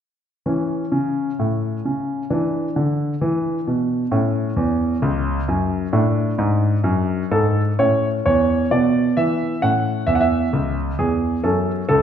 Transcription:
grand piano
0.46 E3 C#4
0.92 C#3
1.39 A2
1.85 C#3
2.30 E3 D4
2.76 D3
3.21 E3
3.67 B2
4.11 A2 C#4
4.56 E2
5.02 C#2
5.48 F#2
5.93 A2 D4
6.38 G#2
6.84 F#2
7.31 G#2 A4
7.79 A2 C#4 C#5
8.26 E2 C#5
8.71 B2 B3 D5
9.17 E3 E5
9.62 A2 C#4 F#5
10.07 E2 E5
10.15 F#5
10.21 E5
10.53 C#2
10.99 E2 G#4
11.44 F#2 C#4 A4
11.89 C#2 A4

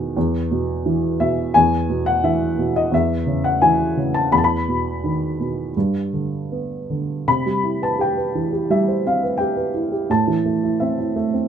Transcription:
upright piano
Already playing: E2 B2 D#3 F#5
0.17 E2
0.51 B2
0.86 E3
1.20 B2 E5
1.54 E2 G#5
1.89 B2
2.06 F#5
2.24 E3 E5
2.58 B2
2.76 D#5
2.92 E2 E5
3.27 C#3
3.44 F#5
3.62 E3 G#5
3.97 C#3
4.14 A5
4.32 E2 B5
4.38 A5
4.44 B5
4.68 B2
5.04 D#3
5.40 B2
5.77 G2
6.13 D3
6.52 B3
6.90 D3
7.28 C3 B5
7.46 G3
7.63 E4
7.82 B4 A5
7.99 G4 G5
8.17 B4
8.35 E3
8.53 G4
8.70 G3 E5
8.88 C5
9.06 C4 F5
9.23 B4
9.38 G4 G5
9.57 B4
9.74 E4
9.92 G4
10.10 A2 A5
10.27 E3
10.46 A3
10.63 E4
10.80 C4 E5
10.99 E4
11.16 A3
11.34 C4

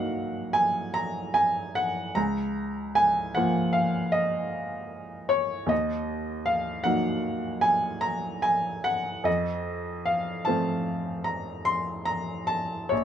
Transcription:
upright piano
Already playing: C2 F#3 A#3 D#4 D#5 F5 F#5
0.53 G#5
0.94 A#5
1.34 G#5
1.75 F#5
2.15 C#2 A#5
2.95 G#5
3.35 F3 A#3 F4 F#5
3.73 F5
4.12 D#5
5.29 C#5
5.66 D#2 D#5
6.46 F5
6.84 F#3 A#3 D#4 F#5
7.61 G#5
8.01 A#5
8.42 G#5
8.84 F#5
9.24 F2 D#5
10.06 F5
10.45 F3 A3 C4 A5
11.24 A#5
11.65 C6
12.05 A#5
12.47 A5
12.89 A#1 C#5

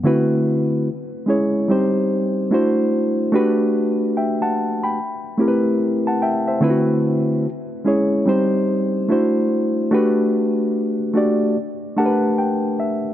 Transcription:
reed electric piano
0.03 D3 A3 C4 E4 F#4 B4
1.26 G#3 C#4 E4 G#4 C#5
1.68 G3 C4 D#4 G4 C5
2.51 A3 D4 E4 F#4 C5
3.32 A3 D4 F#4 G4 B4
4.17 E5 G5
4.42 F#5 A5
4.84 G5 B5
5.38 A3 C4 E4 G4 A#4
5.48 B4
6.07 F#5 A5
6.22 E5 G5
6.48 C5 E5
6.61 D3 A3 C4 E4 F4 B4
6.70 F#4
7.84 G#3 C#4 E4 G#4 C#5
8.26 G3 C4 D#4 G4 C5
9.09 A3 D4 E4 F#4 C5
9.91 A3 D4 F#4 G4 B4
11.13 A3 D4 F#4 G4 D5
11.96 A3 D4 G4 A#4 F#5 A5
12.06 B4
12.38 G5
12.80 E5

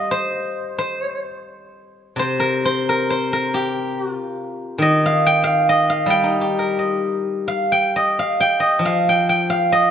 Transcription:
guzheng
Already playing: G3 C5 D#5 F5
0.11 C5
0.78 C5
2.16 C3 C5
2.40 A#4
2.65 C5
2.89 A#4
3.10 C5
3.33 A#4
3.54 G4
4.01 F#4
4.12 F4
4.78 D#3 D#5
5.06 F5
5.26 G5
5.44 F5
5.69 D#5
5.90 F5
6.06 G3
6.10 G5
6.24 D#4
6.41 G4
6.59 A#4
6.79 D#5
7.48 F5
7.72 G5
7.96 D#5
8.19 F5
8.40 G5
8.60 D#5
8.79 F3
8.85 F5
9.09 G5
9.29 G5
9.50 F5
9.72 D#5

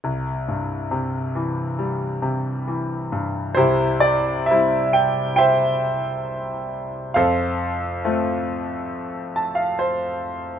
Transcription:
grand piano
0.04 C2
0.48 G2
0.91 C3
1.35 E3
1.79 G3
2.22 C3
2.67 E3
3.12 G2
3.55 C2 E4 G4 C5
4.00 D5
4.46 E5
4.50 G3 C4 E4
4.93 G5
5.36 C5 E5 G5
7.14 F2 A4 C5 F5
8.05 A3 C4 F4
9.36 A5
9.55 F5
9.79 C5

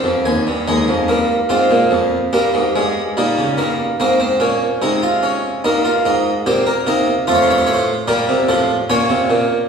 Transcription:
harpsichord
Already playing: D#3 C4
0.04 F2
0.25 D#2 G#5
0.47 G2
0.68 D#2 G#3 D#4
0.88 F2
1.08 G2 A#3
1.49 G#2 C4 F4
1.71 A#2
1.91 F2
2.33 G2 A#3 G4
2.54 G#2
2.76 G2 G#3
3.17 A#2 G3 D#4
3.38 C#3
3.57 G2 A#3
4.00 G#2 A#3 C4
4.20 C4
4.40 A#2 C#4
4.82 C3 G#3 D#4
5.03 F4
5.23 C#4
5.64 G2 A#3 D#4
5.85 F4
6.05 G#2 D#4
6.46 A#2 C4 G4
6.67 A#4
6.87 C3 A#3 D#4
7.27 F2 A3 F4 C5
7.35 C#5
7.42 C5
7.48 G2 C#5
7.58 C5
7.67 A2 C#5
7.74 C5
8.08 A#2 G3 G4 A#4
8.29 C3
8.49 A2 F3 C5
8.90 A#2 C#4 F4 C#5
9.09 C3
9.30 A#2

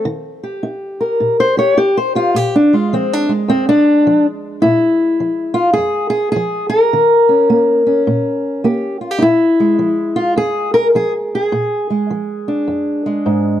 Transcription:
steel-string acoustic guitar
0.05 D#3
0.43 G4
0.63 D#4
1.01 A#4
1.20 A#2
1.40 C5
1.57 G4 C#5
1.77 D#4 G4
1.97 C5
2.15 F4 G4
2.35 A#2 G4
2.56 D4
2.73 G#3 F4
2.93 F3 C4
3.13 D4
3.29 G#3
3.48 F2 C4
3.69 D4
4.07 F3
4.62 A#2 E4
5.20 F3
5.54 F4
5.73 G#4
5.78 F2
6.10 G#4
6.32 G#4
6.36 F3
6.70 A#4
6.93 D#3
7.29 C#4
7.50 A#3
7.87 C#4
8.07 A#2
8.64 A#3 G4
9.01 F4
9.11 G4
9.18 A#2 D#4 E4
9.60 G#3
9.79 F3
10.16 F4
10.36 F2 G#4
10.74 A#4
10.95 F3 G#4
11.35 G#4
11.52 A#2
11.90 G#3
12.11 F3
12.48 D4
12.68 F2
13.06 G#3
13.26 G#2

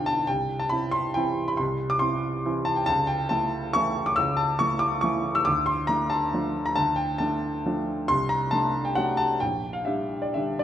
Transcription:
grand piano
Already playing: B1 D3 D4 F4 F5 G5 A5
0.06 A5
0.27 C2 G5
0.59 A5
0.69 C4 E4 B5
0.91 C6
1.14 E3 C4 E4 G5
1.48 B5
1.57 C2 C6
1.90 D6
1.99 C4 E4 C6
2.45 E3 C4 E4
2.65 A5
2.76 G5
2.86 C#2 A5
3.07 G5
3.29 A3 E4 A5
3.73 E3 A3 E4 C#6
4.06 D6
4.16 C#2 E6
4.37 A5
4.59 A3 E4 C#6
4.79 D6
5.01 E3 A3 E4 C#6
5.35 E6
5.45 D2 D6
5.66 C6
5.87 A3 D4 A#5
6.10 A5
6.33 F3 A3 D4
6.66 A#5
6.76 D2 A5
6.96 G5
7.18 A3 D4 A5
7.66 F3 A3 D4
8.08 C2 C6
8.29 A#5
8.51 A3 D4 A5
8.85 G5
8.95 F#3 A3 D4 F#5
9.17 A5
9.40 A#1 G5
9.73 F5
9.85 G3 D4 E5
10.22 D5
10.34 D3 G3 D4 E5
10.59 D5

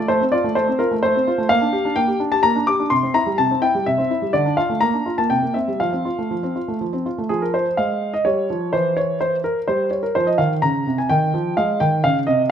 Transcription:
grand piano
0.08 A3 C5
0.21 C4
0.32 F4 D5
0.44 A3
0.55 A3 C5
0.68 C4
0.79 F4 A#4
0.91 A3
1.03 A3 C5
1.15 C4
1.27 F4
1.38 A3
1.49 A#3 F5
1.61 D4
1.73 G4
1.85 D4
1.96 A#3 G5
2.08 G4
2.20 D4
2.32 G4 A5
2.43 A#3 A#5
2.55 D4
2.67 G4 D6
2.79 D4
2.90 C3 C6
3.03 C4
3.14 E4 A#5
3.26 G3
3.38 C3 A5
3.51 C4
3.62 E4 G5
3.75 G3
3.86 C3 E5
3.98 C4
4.10 E4
4.22 G3
4.33 D3 D5
4.46 D4
4.57 F4 F5
4.69 A3
4.81 A#3 A#5
4.94 D4
5.06 F4
5.18 A#3 A5
5.30 C3 G5
5.43 A#3
5.54 C4 E5
5.68 G3
5.80 F3 F5
5.93 C4
6.05 F4
6.18 A3
6.31 F3
6.43 C4
6.56 F4
6.68 A3
6.81 F3
6.93 C4
7.06 F4
7.18 A3
7.29 F3 G#4
7.42 A#4
7.54 C5
7.77 G#3 F5
8.14 D#5
8.25 G3 C#5
8.50 F3
8.73 E3 C5
8.97 C#5
9.21 C5
9.44 A#4
9.68 G3 C5
9.91 C#5
10.03 A#4
10.15 F3 C5
10.27 D#5
10.38 D#3 F5
10.62 C#3 A#5
10.87 C3
10.98 G#5
11.09 D#3 G5
11.34 F3
11.57 G#3 F5
11.80 D#3 G5
12.04 C#3 F5
12.27 C3 D#5

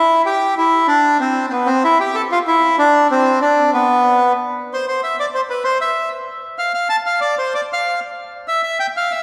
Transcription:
bandoneon
Already playing: E4
0.26 G4
0.58 E4
0.88 D4
1.20 C4
1.49 B3 C4
1.66 C4
1.84 E4
2.00 G4
2.15 A4
2.32 F4
2.47 E4
2.79 D4
3.11 C4
3.42 D4
3.74 B3
4.74 C5
4.88 C5
5.03 E5
5.20 D5
5.35 C5
5.50 B4
5.64 C5
5.81 E5
6.58 F5
6.74 F5
6.89 A5
7.06 F5
7.21 D5
7.39 C5
7.54 D5
7.73 F5
8.48 E5
8.63 E5
8.80 G5
8.97 F5
9.11 E5

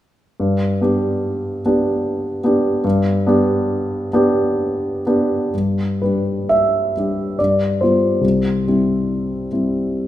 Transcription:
grand piano
0.40 G2
0.81 B3 D4 G4
1.66 B3 D4 G4
2.44 B3 D4 G4
2.84 G2
3.27 B3 D4 G4
4.13 B3 D4 G4
5.07 B3 D4 G4
5.54 G2
6.02 G3 D4 G4 B4
6.49 E5
6.97 G3 D4 G4
7.39 G2 D5
7.81 G3 B3 F4 C5
8.21 C2
8.67 G3 C4 E4
9.52 G3 C4 E4

